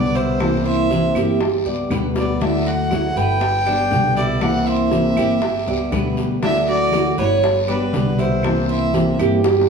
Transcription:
Already playing: C2 B2 D3 G3 B3 D4 G4 D5
0.15 E4 C5, high bongo, short guiro
0.39 C3 E3 A#3 C4 E4, high bongo, long guiro, claves
0.65 C5 E5
0.90 C3 E3 A#3 C4 E4, high bongo, short guiro
1.15 G1 A#3 C4 E4 G4, high bongo, short guiro, claves
1.40 muted steel-string acoustic guitar stroke, high bongo, long guiro
1.65 C#2 G3 B3 G4 D5, high bongo
1.90 D2 B2 D3 G3 B3 G4 B4, high bongo, low bongo, short guiro, claves
2.16 D5, high bongo, short guiro
2.40 D3 F#3 A3 D4 E4 F#4 E5, high bongo, long guiro
2.67 F#4 F#5
2.90 D3 F#3 A3 E4 F#4, high bongo, short guiro, claves
3.16 G1 A3 E4 F#4 B4 G5, high bongo, short guiro
3.40 muted steel-string acoustic guitar stroke, high bongo, long guiro
3.66 G3 B3 D4 G4, high bongo, claves
3.91 C2 B2 D3 G3 B3 G4, high bongo, low bongo, short guiro
4.17 E4 D5, high bongo, short guiro
4.40 C3 E3 A#3 C4 E4 F#5, high bongo, long guiro, claves
4.67 C5 E5
4.91 C3 E3 A#3 C4 E4, high bongo, short guiro
5.16 G1 A#3 C4 E4 G4, high bongo, short guiro, claves
5.42 muted steel-string acoustic guitar stroke, high bongo, long guiro
5.66 C#2 G3 B3 G4 D5, high bongo
5.91 D2 B2 D3 G3 B3 G4 B4, high bongo, low bongo, short guiro, claves
6.17 high bongo, short guiro
6.41 D3 F#3 A3 D4 E4 F#4 E5, high bongo, long guiro
6.68 F#4 D5
6.91 D3 F#3 A3 E4 F#4, high bongo, short guiro, claves
7.17 G1 A3 E4 F#4 B4 C#5, high bongo, short guiro
7.42 muted steel-string acoustic guitar stroke, high bongo, long guiro
7.67 G3 B3 D4 G4 B4, high bongo, claves
7.92 C2 B2 D3 G3 B3 G4, high bongo, low bongo, short guiro
8.19 E4 C5, high bongo, short guiro
8.42 C3 E3 A#3 C4 E4, high bongo, long guiro, claves
8.69 C5 E5
8.92 C3 E3 A#3 C4 E4, high bongo, short guiro
9.17 G1 A#3 C4 E4 G4, high bongo, short guiro, claves
9.43 muted steel-string acoustic guitar stroke, high bongo, long guiro
9.61 high bongo

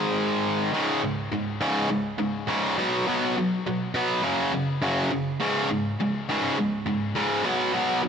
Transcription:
Already playing: G#2 D#3 G#3
0.73 C#2 G#2 C#3
1.03 C#2 G#2
1.32 C#2 G#2
1.61 C#2 G#2 C#3
1.90 C#2 G#2
2.18 C#2 G#2
2.47 C#2 G#2 C#3
2.78 B2 F#3 B3
3.07 B2 F#3 B3
3.37 B2 F#3
3.66 B2 F#3
3.94 B2 F#3 B3
4.23 F#2 C#3 F#3
4.53 F#2 C#3
4.82 F#2 C#3 F#3
5.12 F#2 C#3
5.40 C#2 G#2 C#3
5.70 C#2 G#2
6.00 C#2 G#2
6.29 C#2 G#2 C#3
6.58 C#2 G#2
6.86 C#2 G#2
7.15 C#2 G#2 C#3
7.44 B2 F#3 B3
7.73 B2 F#3 B3
8.03 B2 F#3

